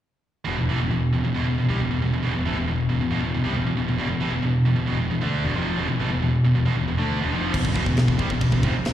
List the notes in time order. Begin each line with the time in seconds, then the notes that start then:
0.47 E1 E2 B2
0.59 E1 E2 B2
0.70 A1 A2 E3
0.81 E1 E2 B2
0.90 E1 E2 B2
1.13 E1 E2 B2
1.24 E1 E2 B2
1.36 E1 E2 B2
1.47 E1 E2 B2
1.58 E1 E2 B2
1.70 C2 C3 G3
1.80 E1 E2 B2
1.91 E1 E2 B2
2.02 E1 E2 B2
2.14 E1 E2 B2
2.24 E1 E2 B2
2.35 E1 E2 B2
2.46 A1 A2 E3
2.59 E1 E2 B2
2.70 E1 E2 B2
2.91 E1 E2 B2
3.01 E1 E2 B2
3.12 E1 E2 B2
3.24 E1 E2 B2
3.35 E1 E2 B2
3.44 C2 C3 G3
3.55 E1 E2 B2
3.67 E1 E2 B2
3.79 E1 E2 B2
3.89 E1 E2 B2
3.99 E1 E2 B2
4.12 E1 E2 B2
4.21 A1 A2 E3
4.33 E1 E2 B2
4.42 E1 E2 B2
4.46 B2
4.66 E1 E2 B2
4.77 E1 E2 B2
4.88 E1 E2 B2
4.99 E1 E2 B2
5.11 E1 E2 B2
5.22 D2 D3 A3 D4
5.44 E1 E2 B2
5.55 F1 F2 C3 F3
5.76 E1 E2 B2
5.88 E1 E2 B2
5.99 A1 A2 E3
6.10 E1 E2 B2
6.22 E1 E2 B2
6.45 E1 E2 B2
6.55 E1 E2 B2
6.65 E1 E2 B2
6.77 E1 E2 B2
6.87 E1 E2 B2
6.98 D2 D3 A3 D4
7.18 E1 E2 B2
7.31 F1 F2 C3 F3
7.53 E1 E2 B2, kick, crash
7.63 E1 E2 B2, kick
7.74 E1 E2 B2, kick, crash
7.85 E1 E2 B2, kick
7.97 snare, crash
8.06 E1 E2 B2, kick
8.18 C2 C3 G3, kick, crash
8.29 E1 E2 B2, kick
8.39 E1 E2 B2, kick, crash
8.51 E1 E2 B2, kick
8.62 F1 F2 C3, kick, crash
8.85 snare, crash